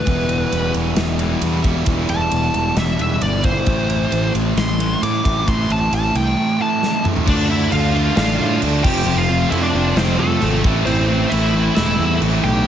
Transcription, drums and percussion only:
0.07 kick loud
0.07 ride medium
0.29 ride medium
0.52 ride medium
0.74 ride medium
0.96 snare loud
0.96 ride medium
1.19 ride medium
1.42 ride loud
1.64 kick medium
1.64 ride medium
1.86 kick loud
1.86 ride medium
2.09 ride medium
2.32 ride medium
2.54 ride medium
2.77 snare loud
2.77 ride medium
2.99 ride medium
3.21 ride medium
3.44 kick medium
3.44 ride medium
3.66 kick loud
3.66 ride medium
3.90 ride medium
4.12 ride medium
4.35 ride medium
4.57 snare loud
4.57 ride medium
4.80 ride medium
5.03 ride loud
5.25 kick medium
5.25 ride medium
5.48 kick loud
5.48 ride medium
5.70 ride medium
5.93 ride loud
6.15 ride medium
6.83 snare medium
7.05 mid tom medium
7.16 floor tom medium
7.27 kick loud
7.27 crash loud
7.27 crash medium
7.72 crash medium
8.17 snare loud
8.17 crash medium
8.62 crash medium
8.84 kick loud
8.84 crash loud
9.07 crash medium
9.52 crash medium
9.97 snare loud
9.97 crash medium
10.42 crash medium
10.64 kick loud
10.87 crash medium
11.32 crash medium
11.76 snare loud
11.76 crash medium
12.22 crash medium

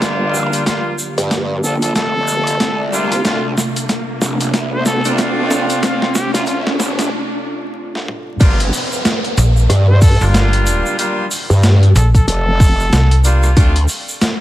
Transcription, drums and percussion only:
0.02 kick loud
0.02 snare medium
0.02 closed hi-hat medium
0.02 shaker soft
0.34 shaker medium
0.53 closed hi-hat medium
0.53 shaker medium
0.66 kick medium
0.66 snare medium
0.66 closed hi-hat medium
0.66 shaker soft
0.99 shaker loud
1.18 closed hi-hat medium
1.18 shaker medium
1.31 kick medium
1.31 snare medium
1.31 closed hi-hat medium
1.31 shaker soft
1.64 shaker loud
1.82 closed hi-hat medium
1.82 shaker medium
1.95 kick loud
1.95 snare medium
1.95 closed hi-hat medium
1.95 shaker soft
2.28 shaker loud
2.47 closed hi-hat medium
2.47 shaker medium
2.60 kick loud
2.60 snare medium
2.60 closed hi-hat medium
2.60 shaker soft
2.93 shaker loud
3.12 cross-stick soft
3.12 closed hi-hat medium
3.12 shaker soft
3.25 kick loud
3.25 snare medium
3.25 closed hi-hat medium
3.25 shaker soft
3.58 snare medium
3.58 shaker medium
3.76 closed hi-hat medium
3.76 shaker medium
3.89 kick loud
3.89 snare medium
3.89 closed hi-hat medium
3.89 shaker soft
4.22 snare medium
4.22 shaker medium
4.41 closed hi-hat medium
4.41 shaker medium
4.54 kick loud
4.54 snare medium
4.54 closed hi-hat medium
4.54 shaker soft
4.86 snare medium
4.86 shaker loud
5.05 closed hi-hat medium
5.05 shaker medium
5.18 kick medium
5.18 snare medium
5.18 closed hi-hat medium
5.18 shaker soft
5.51 snare medium
5.51 shaker medium
5.70 closed hi-hat medium
5.70 shaker medium
5.83 kick loud
5.83 snare medium
5.83 closed hi-hat medium
5.83 shaker soft
6.02 snare medium
6.15 snare loud
6.15 shaker medium
6.35 snare medium
6.35 closed hi-hat medium
6.35 shaker medium
6.46 kick loud
6.46 closed hi-hat medium
6.46 shaker soft
6.67 snare medium
6.80 snare loud
6.80 shaker medium
6.99 snare medium
6.99 closed hi-hat medium
6.99 shaker medium
7.95 snare medium
8.08 mid tom medium
8.40 kick loud
8.40 closed hi-hat medium
8.40 crash loud
8.40 shaker soft
8.60 closed hi-hat medium
8.73 open hi-hat medium
8.73 shaker medium
8.92 shaker medium
9.05 snare loud
9.05 closed hi-hat medium
9.05 shaker soft
9.24 closed hi-hat soft
9.37 closed hi-hat medium
9.37 shaker loud
9.57 shaker medium
9.70 cross-stick medium
9.70 closed hi-hat medium
9.70 shaker soft
10.02 kick loud
10.02 open hi-hat medium
10.02 shaker loud
10.21 shaker medium
10.34 snare loud
10.34 closed hi-hat medium
10.34 shaker soft
10.53 closed hi-hat medium
10.66 closed hi-hat medium
10.66 shaker loud
10.86 shaker soft
10.99 closed hi-hat medium
10.99 shaker soft
11.31 open hi-hat medium
11.31 shaker medium
11.50 shaker medium
11.63 snare loud
11.63 closed hi-hat medium
11.63 shaker soft
11.83 closed hi-hat soft
11.96 closed hi-hat medium
11.96 shaker medium
12.15 kick medium
12.15 closed hi-hat soft
12.15 shaker medium
12.28 closed hi-hat medium
12.28 shaker soft
12.60 kick loud
12.60 open hi-hat medium
12.60 shaker medium
12.80 shaker medium
12.93 snare loud
12.93 closed hi-hat medium
12.93 shaker soft
13.11 closed hi-hat medium
13.24 closed hi-hat medium
13.24 shaker medium
13.43 cross-stick soft
13.43 shaker medium
13.57 kick loud
13.57 closed hi-hat medium
13.57 shaker soft
13.76 closed hi-hat medium
13.88 open hi-hat medium
13.88 shaker medium
14.08 shaker medium
14.21 snare loud
14.21 closed hi-hat medium
14.21 shaker soft

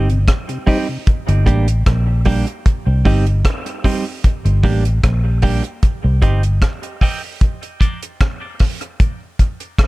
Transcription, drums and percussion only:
0.10 closed hi-hat soft
0.28 kick loud
0.28 cross-stick loud
0.28 closed hi-hat medium
0.49 closed hi-hat soft
0.67 kick medium
0.67 open hi-hat medium
1.07 kick loud
1.07 closed hi-hat medium
1.28 closed hi-hat medium
1.46 kick medium
1.46 closed hi-hat medium
1.68 closed hi-hat medium
1.86 kick loud
1.86 cross-stick loud
1.86 closed hi-hat medium
2.25 kick medium
2.25 open hi-hat medium
2.47 closed hi-hat soft
2.66 kick loud
2.66 closed hi-hat medium
3.05 kick medium
3.05 open hi-hat medium
3.27 closed hi-hat medium
3.45 kick loud
3.45 cross-stick loud
3.45 closed hi-hat medium
3.66 closed hi-hat medium
3.84 kick medium
3.84 open hi-hat medium
4.24 kick loud
4.24 closed hi-hat medium
4.46 closed hi-hat soft
4.64 kick medium
4.64 open hi-hat medium
4.85 closed hi-hat medium
5.04 kick loud
5.04 cross-stick loud
5.04 closed hi-hat medium
5.42 kick loud
5.42 open hi-hat medium
5.64 closed hi-hat medium
5.83 kick loud
5.83 closed hi-hat medium
6.22 kick medium
6.22 closed hi-hat medium
6.43 closed hi-hat medium
6.62 kick loud
6.62 cross-stick loud
6.62 closed hi-hat medium
6.83 closed hi-hat soft
7.01 kick medium
7.01 open hi-hat medium
7.41 kick loud
7.41 closed hi-hat medium
7.63 closed hi-hat soft
7.81 kick medium
7.81 closed hi-hat medium
8.03 closed hi-hat medium
8.21 kick loud
8.21 cross-stick loud
8.21 closed hi-hat medium
8.59 kick loud
8.59 cross-stick medium
8.59 open hi-hat medium
8.81 closed hi-hat soft
9.00 kick loud
9.00 closed hi-hat medium
9.39 kick medium
9.39 closed hi-hat medium
9.60 closed hi-hat medium
9.78 kick loud
9.78 cross-stick loud
9.78 closed hi-hat medium

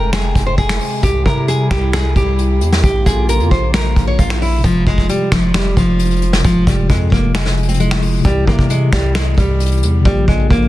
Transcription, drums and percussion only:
0.13 finger snap medium
0.13 snare loud
0.13 closed hi-hat medium
0.35 kick loud
0.35 closed hi-hat medium
0.58 kick loud
0.58 closed hi-hat medium
0.69 finger snap medium
0.69 snare medium
0.81 open hi-hat medium
1.03 kick loud
1.03 closed hi-hat medium
1.26 kick medium
1.48 closed hi-hat medium
1.71 finger snap medium
1.71 kick medium
1.71 snare medium
1.93 finger snap medium
1.93 snare loud
1.93 closed hi-hat medium
2.16 kick loud
2.16 closed hi-hat medium
2.39 closed hi-hat medium
2.61 closed hi-hat medium
2.72 snare medium
2.84 kick loud
2.84 closed hi-hat medium
3.06 kick medium
3.06 closed hi-hat medium
3.29 closed hi-hat medium
3.40 closed hi-hat soft
3.51 kick medium
3.74 finger snap medium
3.74 snare loud
3.74 closed hi-hat medium
3.96 kick medium
3.96 closed hi-hat medium
4.19 kick loud
4.19 closed hi-hat medium
4.30 finger snap medium
4.30 snare medium
4.42 open hi-hat medium
4.64 kick loud
4.64 closed hi-hat medium
4.87 kick medium
4.98 kick medium
5.09 closed hi-hat medium
5.32 finger snap medium
5.32 kick medium
5.32 snare medium
5.54 finger snap medium
5.54 snare loud
5.54 closed hi-hat medium
5.77 kick loud
5.77 closed hi-hat medium
5.99 closed hi-hat medium
6.05 closed hi-hat medium
6.11 closed hi-hat medium
6.16 closed hi-hat soft
6.22 closed hi-hat medium
6.33 snare medium
6.44 kick loud
6.44 closed hi-hat medium
6.67 kick loud
6.67 closed hi-hat medium
6.90 kick loud
6.90 closed hi-hat medium
7.12 kick medium
7.35 finger snap medium
7.35 snare loud
7.35 closed hi-hat medium
7.46 snare medium
7.57 closed hi-hat soft
7.63 closed hi-hat medium
7.68 closed hi-hat medium
7.74 closed hi-hat medium
7.80 closed hi-hat medium
7.91 finger snap medium
7.91 snare medium
8.02 open hi-hat medium
8.25 kick loud
8.25 closed hi-hat medium
8.47 kick medium
8.59 kick medium
8.70 closed hi-hat medium
8.93 finger snap medium
8.93 kick medium
8.93 snare medium
9.15 finger snap medium
9.15 snare loud
9.15 closed hi-hat medium
9.38 kick loud
9.38 closed hi-hat medium
9.60 closed hi-hat medium
9.66 closed hi-hat medium
9.72 closed hi-hat medium
9.77 closed hi-hat soft
9.83 closed hi-hat medium
10.05 kick loud
10.28 kick medium
10.51 kick loud

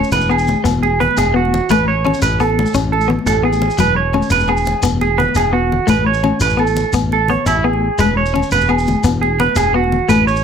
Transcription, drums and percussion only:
0.04 shekere soft
0.12 cajon slap medium
0.12 muted conga medium
0.12 shekere medium
0.21 high conga medium
0.21 shekere soft
0.30 cajon slap soft
0.30 low agogo medium
0.39 shekere soft
0.47 high conga medium
0.47 low conga medium
0.47 shekere soft
0.65 cajon bass medium
0.65 muted conga medium
0.65 low agogo medium
0.65 shekere medium
0.83 cajon slap soft
0.83 high conga medium
1.00 cajon bass medium
1.00 low conga medium
1.11 high conga medium
1.17 cajon slap loud
1.17 muted conga medium
1.17 low agogo medium
1.17 shekere medium
1.35 cajon slap soft
1.45 high conga medium
1.53 cajon slap soft
1.53 low conga loud
1.70 cajon bass medium
1.70 muted conga loud
1.70 high conga loud
1.70 low agogo medium
1.70 shekere medium
1.87 cajon slap soft
2.05 high conga medium
2.05 low conga medium
2.05 low agogo medium
2.14 shekere soft
2.22 cajon slap medium
2.22 muted conga medium
2.22 low conga soft
2.22 shekere medium
2.33 high conga medium
2.40 cajon bass medium
2.40 low agogo medium
2.40 shekere soft
2.50 low conga soft
2.57 cajon slap soft
2.57 high conga medium
2.57 low conga medium
2.66 shekere soft
2.74 cajon bass medium
2.74 muted conga medium
2.74 low agogo medium
2.74 shekere medium
2.93 high conga medium
3.01 shekere soft
3.10 low conga medium
3.19 high conga medium
3.19 low conga soft
3.27 cajon slap medium
3.27 muted conga medium
3.27 low conga soft
3.27 low agogo medium
3.27 shekere medium
3.45 cajon slap soft
3.53 high conga medium
3.53 shekere soft
3.62 cajon slap soft
3.62 low conga medium
3.70 shekere soft
3.78 cajon bass medium
3.78 muted conga medium
3.78 high conga medium
3.78 low conga soft
3.78 low agogo medium
3.78 shekere medium
4.13 cajon slap soft
4.13 high conga loud
4.13 low conga medium
4.13 low agogo medium
4.22 shekere soft
4.30 cajon slap medium
4.30 muted conga medium
4.30 shekere medium
4.40 high conga medium
4.40 shekere soft
4.48 cajon slap soft
4.48 low agogo medium
4.57 shekere soft
4.65 high conga medium
4.65 low conga medium
4.65 shekere soft
4.82 cajon bass medium
4.82 muted conga medium
4.82 low agogo medium
4.82 shekere loud
5.01 cajon slap soft
5.01 high conga medium
5.18 cajon bass medium
5.18 low conga loud
5.29 high conga medium
5.35 cajon slap medium
5.35 muted conga medium
5.35 low agogo medium
5.35 shekere loud
5.54 cajon slap soft
5.71 cajon slap soft
5.71 low conga medium
5.88 cajon bass medium
5.88 muted conga loud
5.88 high conga medium
5.88 low conga soft
5.88 low agogo medium
5.88 shekere medium
6.06 cajon slap soft
6.14 shekere soft
6.23 cajon slap soft
6.23 high conga medium
6.23 low conga medium
6.23 low agogo medium
6.40 cajon slap medium
6.40 muted conga medium
6.40 shekere loud
6.49 high conga medium
6.49 shekere soft
6.59 cajon slap soft
6.59 low agogo medium
6.67 shekere soft
6.76 high conga medium
6.76 low conga medium
6.76 shekere soft
6.93 cajon bass medium
6.93 muted conga medium
6.93 low agogo medium
6.93 shekere loud
7.12 cajon slap soft
7.12 high conga medium
7.28 cajon bass medium
7.28 low conga medium
7.46 cajon slap medium
7.46 muted conga medium
7.46 low agogo medium
7.46 shekere medium
7.65 cajon slap soft
7.73 high conga medium
7.82 cajon slap soft
7.98 cajon bass medium
7.98 muted conga medium
7.98 high conga medium
7.98 low conga soft
7.98 low agogo medium
7.98 shekere medium
8.18 cajon slap soft
8.26 shekere soft
8.35 high conga medium
8.35 low conga medium
8.35 low agogo medium
8.43 shekere soft
8.51 cajon slap medium
8.51 muted conga medium
8.51 shekere medium
8.61 high conga medium
8.61 shekere soft
8.69 cajon slap soft
8.69 low agogo medium
8.78 shekere soft
8.87 high conga medium
8.87 low conga medium
8.87 shekere soft
9.03 cajon bass medium
9.03 muted conga medium
9.03 low agogo medium
9.03 shekere medium
9.22 cajon slap soft
9.22 high conga medium
9.39 cajon bass medium
9.39 low conga medium
9.49 high conga medium
9.56 cajon slap loud
9.56 muted conga medium
9.56 low agogo medium
9.56 shekere medium
9.74 cajon slap soft
9.84 high conga medium
9.92 low conga medium
10.09 cajon bass medium
10.09 muted conga medium
10.09 high conga medium
10.09 low agogo medium
10.09 shekere medium
10.27 cajon slap soft
10.27 shekere soft
10.36 shekere soft

